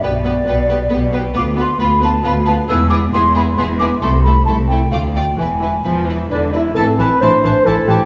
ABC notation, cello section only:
X:1
M:3/4
L:1/8
Q:1/4=134
K:Gmix
V:1 name="Cello section" clef=bass
B,,2 B,,2 B,,2 | [K:Am] D,,2 D,,2 D,,2 | E,,2 E,,2 E,,2 | C,,2 C,,2 D,,2 |
E,,2 E,,2 E,,2 | A,, A,, A,, A,, A,, A,, |]